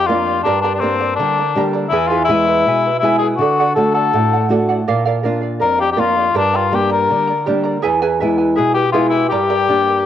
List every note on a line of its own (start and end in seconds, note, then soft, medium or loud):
0.00 0.43 F2 medium
0.06 0.38 A#3 soft
0.06 0.38 D4 soft
0.06 0.43 F4 medium
0.06 0.38 F4 soft
0.06 0.26 A#4 medium
0.06 0.25 D5 medium
0.06 0.25 F5 medium
0.26 0.45 D5 soft
0.26 0.44 F5 soft
0.43 1.17 G2 medium
0.43 0.60 D4 medium
0.43 0.63 G4 medium
0.43 0.63 A#4 medium
0.43 0.63 D5 medium
0.43 0.64 G5 medium
0.43 0.63 A#5 medium
0.61 0.72 D4 medium
0.61 0.82 A#4 medium
0.61 0.82 D5 medium
0.61 0.82 A#5 medium
0.65 0.82 G4 soft
0.65 0.82 G5 medium
0.75 0.81 D4 medium
0.80 1.41 G3 soft
0.80 1.41 A#3 soft
0.80 1.15 C4 medium
0.80 1.41 D4 soft
0.80 1.01 A#4 medium
0.80 1.00 D5 medium
0.80 1.00 G5 medium
0.84 1.00 A#5 medium
1.01 1.19 A#4 soft
1.01 1.19 D5 soft
1.01 1.19 A#5 soft
1.16 1.90 D3 medium
1.16 1.68 D4 medium
1.16 1.37 G5 medium
1.20 1.38 A#4 medium
1.20 1.38 D5 medium
1.20 1.37 A#5 medium
1.38 1.56 A#4 soft
1.38 1.56 D5 soft
1.38 1.56 A#5 soft
1.55 1.85 G3 soft
1.55 1.85 A#3 soft
1.55 1.85 D4 medium
1.55 1.74 G4 medium
1.55 1.74 A#4 medium
1.55 1.73 D5 medium
1.55 1.75 G5 medium
1.55 1.72 A#5 medium
1.73 1.92 A#4 soft
1.73 1.92 D5 soft
1.73 1.92 A#5 soft
1.89 2.63 E2 medium
1.89 2.09 E4 medium
1.89 2.10 E4 medium
1.89 2.09 G#4 medium
1.89 2.10 E5 medium
1.93 2.09 B4 medium
1.93 2.09 G#5 medium
2.08 2.28 E4 medium
2.08 2.24 F4 medium
2.08 2.29 G#4 medium
2.08 2.28 B4 medium
2.08 2.28 E5 medium
2.08 2.29 G#5 medium
2.25 2.88 G#3 soft
2.25 2.97 E4 medium
2.29 2.88 B3 soft
2.29 2.88 E4 medium
2.29 2.47 E4 medium
2.29 2.48 B4 medium
2.29 2.47 E5 medium
2.29 2.46 G#5 medium
2.47 2.66 E4 soft
2.47 2.66 B4 soft
2.47 2.66 G#5 soft
2.66 3.38 B2 medium
2.66 2.85 E4 medium
2.66 2.85 B4 medium
2.66 2.85 E5 medium
2.66 2.84 G#5 medium
2.85 3.03 E4 soft
2.85 3.03 B4 soft
2.85 3.03 G#5 soft
2.99 3.32 G#3 soft
2.99 3.32 B3 soft
2.99 3.18 E4 medium
2.99 3.32 E4 medium
2.99 3.21 G#4 medium
2.99 3.21 E5 medium
3.04 3.22 E4 medium
3.04 3.22 B4 medium
3.04 3.21 G#5 medium
3.19 3.27 G#4 medium
3.19 3.40 G#5 soft
3.23 3.41 E4 soft
3.23 3.41 B4 soft
3.37 4.11 D3 medium
3.37 3.73 F#4 medium
3.41 3.59 A4 medium
3.41 3.59 D5 medium
3.41 3.59 F#5 medium
3.60 3.75 A4 medium
3.60 3.76 D5 medium
3.60 3.76 F#5 medium
3.75 4.35 A3 soft
3.75 4.36 D4 soft
3.75 4.36 F#4 soft
3.75 3.93 A4 medium
3.75 3.95 A4 medium
3.75 3.95 D5 medium
3.75 3.93 F#5 medium
3.94 4.46 A4 medium
3.94 4.13 D5 soft
3.94 4.13 F#5 soft
4.13 4.85 A2 medium
4.13 4.32 A4 soft
4.13 4.32 D5 medium
4.13 4.32 F#5 medium
4.33 4.50 D5 soft
4.33 4.50 F#5 soft
4.49 4.79 A3 soft
4.49 4.79 D4 soft
4.49 4.80 F#4 soft
4.49 4.69 A4 medium
4.49 4.69 D5 medium
4.49 4.68 F#5 medium
4.69 4.87 D5 soft
4.69 4.87 F#5 medium
4.88 5.60 A#2 medium
4.88 5.05 A#4 medium
4.88 5.05 D5 medium
4.88 5.04 F5 medium
5.06 5.22 A#4 medium
5.06 5.23 D5 medium
5.06 5.24 F5 medium
5.23 5.84 A#3 soft
5.23 5.84 D4 soft
5.23 5.84 F4 soft
5.23 5.42 A#4 medium
5.23 5.41 D5 medium
5.23 5.40 F5 medium
5.41 5.59 D5 soft
5.41 5.60 F5 soft
5.59 6.33 F2 medium
5.59 5.79 A#4 medium
5.59 5.78 A#4 medium
5.59 5.78 D5 medium
5.59 5.77 F5 medium
5.78 5.91 G4 medium
5.78 5.95 D5 soft
5.78 5.96 F5 soft
5.92 6.01 G4 medium
5.92 6.16 A#4 medium
5.97 6.27 A#3 soft
5.97 6.27 D4 soft
5.97 6.28 F4 soft
5.97 6.36 F4 medium
5.97 6.16 D5 medium
5.97 6.15 F5 medium
6.16 6.34 D5 soft
6.16 6.34 F5 soft
6.34 7.06 G2 medium
6.34 6.58 D4 medium
6.34 6.53 G4 medium
6.34 6.53 A#4 medium
6.34 6.53 D5 medium
6.34 6.53 G5 medium
6.34 6.52 A#5 medium
6.54 6.76 F4 medium
6.54 6.72 G4 soft
6.54 6.71 A#4 medium
6.54 6.71 D5 medium
6.54 6.70 G5 medium
6.54 6.71 A#5 medium
6.71 7.31 G3 soft
6.71 7.32 A#3 soft
6.71 7.32 D4 medium
6.71 6.92 G4 medium
6.71 6.89 A#4 medium
6.71 6.88 D5 medium
6.71 6.90 G5 medium
6.71 6.88 A#5 medium
6.89 7.08 A#4 soft
6.89 7.43 A#4 medium
6.89 7.09 D5 soft
6.89 7.08 A#5 soft
7.09 7.82 D3 medium
7.09 7.28 A#4 medium
7.09 7.27 D5 medium
7.09 7.27 G5 medium
7.09 7.26 A#5 medium
7.27 7.46 A#4 soft
7.27 7.46 D5 soft
7.27 7.46 A#5 soft
7.46 7.76 G3 soft
7.46 7.77 A#3 soft
7.46 7.77 D4 medium
7.46 7.65 G4 medium
7.46 7.64 A#4 medium
7.46 7.64 D5 medium
7.46 7.65 G5 medium
7.46 7.62 A#5 medium
7.64 7.83 A#4 soft
7.64 7.83 D5 soft
7.64 7.83 A#5 medium
7.82 8.56 E2 medium
7.82 8.01 E4 medium
7.82 8.01 G#4 medium
7.82 8.01 B4 medium
7.82 8.01 E5 medium
7.82 8.01 G#5 medium
8.02 8.20 E4 medium
8.02 8.21 G#4 medium
8.02 8.20 B4 medium
8.02 8.19 E5 medium
8.02 8.20 G#5 medium
8.21 8.80 G#3 soft
8.21 8.81 B3 soft
8.21 8.39 E4 medium
8.21 8.81 E4 medium
8.21 8.38 B4 medium
8.21 8.39 E5 medium
8.21 8.37 G#5 medium
8.38 8.55 E4 soft
8.38 8.55 B4 soft
8.38 8.56 G#5 soft
8.56 9.29 B2 medium
8.56 8.75 E4 medium
8.56 8.74 G#4 medium
8.56 8.75 B4 medium
8.56 8.75 E5 medium
8.56 8.74 G#5 medium
8.75 8.92 E4 soft
8.75 8.92 G4 medium
8.75 8.93 B4 soft
8.75 8.93 G#5 soft
8.92 9.23 G#3 soft
8.92 9.24 B3 soft
8.92 9.12 E4 medium
8.92 9.24 E4 medium
8.92 9.09 F4 medium
8.92 9.12 G#4 medium
8.92 9.11 B4 medium
8.92 9.12 E5 medium
8.92 9.11 G#5 medium
9.09 9.28 E4 medium
9.09 9.31 E4 soft
9.09 9.31 B4 soft
9.09 9.31 G#5 soft
9.29 10.03 G2 medium
9.29 10.06 G4 medium
9.29 9.49 G4 medium
9.29 9.49 A#4 medium
9.29 9.48 D5 medium
9.29 9.49 G5 medium
9.29 9.49 A#5 medium
9.50 9.68 G4 medium
9.50 9.67 A#4 medium
9.50 9.68 D5 medium
9.50 9.67 G5 medium
9.50 9.68 A#5 medium
9.68 10.06 G3 soft
9.68 10.06 A#3 soft
9.68 10.06 D4 medium
9.68 9.87 A#4 medium
9.68 9.87 D5 medium
9.68 9.87 G5 medium
9.68 9.86 A#5 medium
9.88 10.06 A#4 soft
9.88 10.06 D5 soft
9.88 10.06 A#5 soft